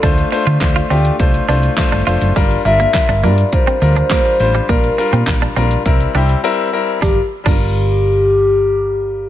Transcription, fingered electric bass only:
\new Staff \with { instrumentName = "Fingered electric bass" } { \clef bass \time 4/4 \key g \dorian \tempo 4 = 103 d,8 r16 d16 d,8 d,8 c,8 c,8 r16 g,,16 f,,16 fis,,16 | g,,8 g,,8 r16 g,,16 g,8 r8 d,8 r8 a,,8 | bes,,8 r16 bes,16 bes,,8 bes,,8 c,8 c,8 r4 | g,,16 r8 g,,2.~ g,,16 | }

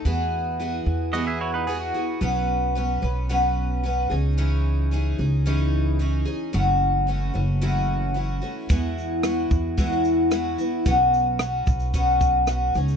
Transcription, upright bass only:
\new Staff \with { instrumentName = "Upright bass" } { \clef bass \time 4/4 \key e \major \tempo 4 = 111 e,4. e,2 r8 | b,,4. b,,2 cis,8~ | cis,4. cis,2 r8 | fis,,4. fis,,2 r8 |
e,4. e,2 r8 | b,,4. b,,2 cis,8 | }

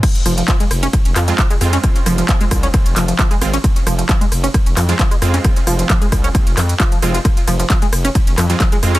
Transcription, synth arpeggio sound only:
\new Staff \with { instrumentName = "Synth arpeggio sound" } { \clef bass \time 4/4 \key f \minor \tempo 4 = 133 r8 f16 f16 f16 aes16 r16 des'16 r8 f16 f16 f16 aes16 r16 des'16 | r8 f16 f16 f16 aes16 r16 des'16 r8 f16 f16 f16 aes16 r16 des'16 | r8 f16 f16 f16 aes16 r16 des'16 r8 f16 f16 f16 aes16 r16 des'16 | r8 f16 f16 f16 aes16 r16 des'16 r8 f16 r16 f16 f16 f16 f'16 |
r8 f16 f16 f16 aes16 r16 des'16 r8 f16 f16 f16 aes16 r16 des'16 | }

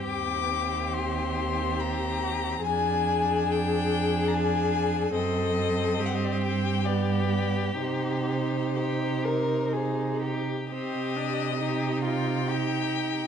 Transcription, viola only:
\new Staff \with { instrumentName = "Viola" } { \time 3/4 \key c \minor \tempo 4 = 69 c'2. | d'2. | c'2 b4 | ees'2. |
c'8 d'8 ees'4 ees'4 | }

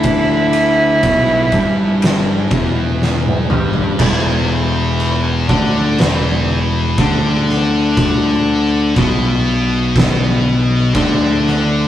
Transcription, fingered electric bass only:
\new Staff \with { instrumentName = "Fingered electric bass" } { \clef bass \time 4/4 \key e \minor \tempo 4 = 61 d,4 b,,8 g,,4 e,,4 g,,8 | e,,4. d,8 e,,4 d,4~ | d,4 b,,2 d,4 | }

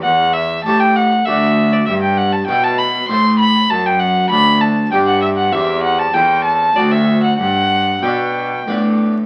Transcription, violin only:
\new Staff \with { instrumentName = "Violin" } { \time 3/4 \key g \major \tempo 4 = 98 fis''8 e''8 a''16 g''16 fis''8 e''8. d''16 | e''16 g''16 fis''16 a''16 g''16 a''16 b''8 c'''8 b''8 | a''16 g''16 fis''8 b''8 a''8 g''16 fis''16 e''16 fis''16 | e''8 fis''16 a''16 g''8 a''8 d''16 e''8 fis''16 |
fis''4 g''4. r8 | }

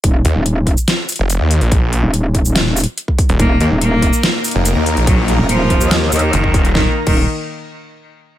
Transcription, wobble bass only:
\new Staff \with { instrumentName = "Wobble bass" } { \clef bass \time 4/4 \key ees \minor \tempo 4 = 143 ees,,8 r16 ees,,4 r2 r16 | r8. ees,,4 ees,,4 r4 r16 | ees,,8 r16 ees,,4 r2 r16 | r8. ees,,4 ees,8. ees,8 r4 |
ees,,16 r8 ees,,8 r2 r8. | }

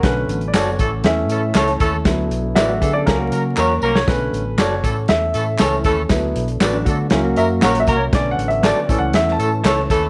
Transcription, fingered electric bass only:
\new Staff \with { instrumentName = "Fingered electric bass" } { \clef bass \time 4/4 \key a \major \tempo 4 = 119 b,,8 a,,8 fis,,8 a,,8 e,8 a,8 cis,8 dis,8 | d,8 b,,8 a,,8 d8 cis,8 cis8 e,8 c,8 | b,,8 a,,8 fis,,8 a,8 e,8 a,8 cis,8 dis,8 | d,8 b,,8 a,,8 d8 cis,8 fis,8 ais,,8 c,8 |
b,,8 a,,8. r16 a,,16 cis,16 e,8 a,8 cis,8 dis,8 | }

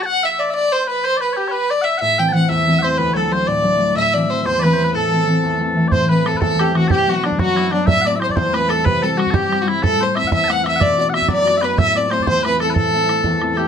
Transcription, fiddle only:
\new Staff \with { instrumentName = "Fiddle" } { \time 6/8 \key a \dorian \tempo 4. = 123 fis''8 e''8 d''8 d''8 c''8 b'8 | c''8 b'8 g'8 b'8 d''8 e''8 | e''8 g''8 fis''8 e''4 c''8 | b'8 a'8 c''8 d''4. |
e''8 d''8 c''8 c''8 b'4 | a'2 r4 | c''8 b'8 a'8 a'8 g'8 fis'8 | g'8 fis'8 d'8 fis'4 d'8 |
e''8 d''8 c''16. d''32 c''8 b'8 a'8 | b'8 a'8 fis'8 g'8.~ g'32 fis'32 e'8 | a'8 c''8 e''8 e''8 fis''8 e''8 | d''8 d''8 e''8 d''4 b'8 |
e''8 d''8 c''8 c''8 b'8 a'8 | a'2 r16. a'32 g'8 | }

